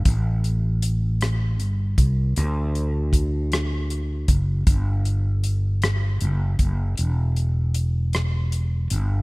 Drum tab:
HH |xxxxxx|xxxxxx|xxxxxx|xxxxxx|
SD |---r--|---r--|---r--|---r--|
BD |o----o|--o--o|o----o|------|